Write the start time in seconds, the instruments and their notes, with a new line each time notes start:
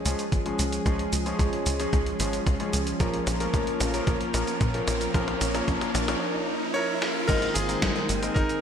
Already playing: analog synth pad F3 G#3 C#4 G#4, riser
0.05 analog synth bass C#2, grand piano F3 G#3 C#4 G#4, closed hi-hat, cabasa
0.19 closed hi-hat, cabasa
0.32 analog synth bass G#1, kick, closed hi-hat, mid tom, cabasa
0.46 grand piano F3 G#3 C#4 G#4, closed hi-hat
0.59 analog synth bass C#2, closed hi-hat, cabasa
0.72 closed hi-hat, cabasa
0.86 analog synth bass C#2, grand piano F3 G#3 C#4 G#4, kick, closed hi-hat, mid tom, cabasa
0.99 closed hi-hat
1.13 analog synth bass C#2, closed hi-hat, cabasa
1.26 grand piano F3 G#3 C#4 G#4, closed hi-hat, cabasa
1.39 analog synth bass C#2, kick, closed hi-hat, mid tom, cabasa
1.53 closed hi-hat
1.66 analog synth bass C#2, closed hi-hat, cabasa
1.80 grand piano F3 G#3 C#4 G#4, closed hi-hat, cabasa
1.93 analog synth bass C#2, kick, closed hi-hat, mid tom, cabasa
2.06 closed hi-hat
2.20 analog synth bass G#1, grand piano F3 G#3 C#4 G#4, closed hi-hat, cabasa
2.33 closed hi-hat, cabasa
2.47 analog synth bass C#2, kick, closed hi-hat, mid tom, cabasa
2.60 grand piano F3 G#3 C#4 G#4, closed hi-hat
2.73 analog synth bass C#2, closed hi-hat, cabasa
2.87 closed hi-hat, cabasa
3.00 analog synth bass A#1, grand piano F3 A#3 C#4 A#4, analog synth pad A#3 A#4, kick, closed hi-hat, mid tom, cabasa
3.14 closed hi-hat
3.27 analog synth bass A#1, closed hi-hat, mid tom, cabasa
3.40 grand piano F3 A#3 C#4 A#4, closed hi-hat, cabasa
3.54 analog synth bass A#1, kick, closed hi-hat, mid tom, cabasa
3.67 closed hi-hat
3.80 analog synth bass A#1, closed hi-hat, mid tom, cabasa
3.94 grand piano F3 A#3 C#4 A#4, closed hi-hat, cabasa
4.07 analog synth bass A#1, kick, closed hi-hat, mid tom, cabasa
4.21 closed hi-hat
4.34 analog synth bass A#1, grand piano F3 A#3 C#4 A#4, closed hi-hat, mid tom, cabasa
4.47 closed hi-hat, cabasa
4.61 analog synth bass A#2, kick, closed hi-hat, mid tom, cabasa
4.74 grand piano F3 A#3 C#4 A#4, closed hi-hat
4.88 analog synth bass A#1, closed hi-hat, mid tom, cabasa
5.01 closed hi-hat, cabasa
5.14 analog synth bass A#1, grand piano F3 A#3 C#4 A#4, kick, closed hi-hat, mid tom, cabasa
5.28 closed hi-hat, mid tom
5.41 analog synth bass A#1, closed hi-hat, mid tom, cabasa
5.55 grand piano F3 A#3 C#4 A#4, closed hi-hat, mid tom, cabasa
5.68 analog synth bass A#1, kick, closed hi-hat, mid tom, cabasa
5.81 closed hi-hat, mid tom, cabasa
5.95 analog synth bass A#1, closed hi-hat, mid tom, cabasa
6.08 grand piano F3 A#3 C#4 A#4, closed hi-hat, mid tom, cabasa
6.74 electric grand piano A#4 C#5
7.02 snare
7.28 analog synth bass G#1, analog synth pad D#3 A#3 C4 G#4, grand piano G#3 C4 D#4 A#4, electric grand piano D#4 A#4, kick, closed hi-hat, crash, cabasa
7.42 closed hi-hat
7.54 analog synth bass G#1, electric grand piano F4 G#4, closed hi-hat, cabasa
7.69 grand piano G#3 C4 D#4 A#4, closed hi-hat, cabasa
7.82 analog synth bass G#1, kick, snare, closed hi-hat, cabasa
7.96 snare, closed hi-hat
8.09 analog synth bass G#1, closed hi-hat, cabasa
8.23 grand piano G#3 C4 D#4 A#4, closed hi-hat, cabasa
8.34 analog synth bass G#1, electric grand piano D#4 A#4, kick, closed hi-hat, cabasa
8.49 closed hi-hat, cabasa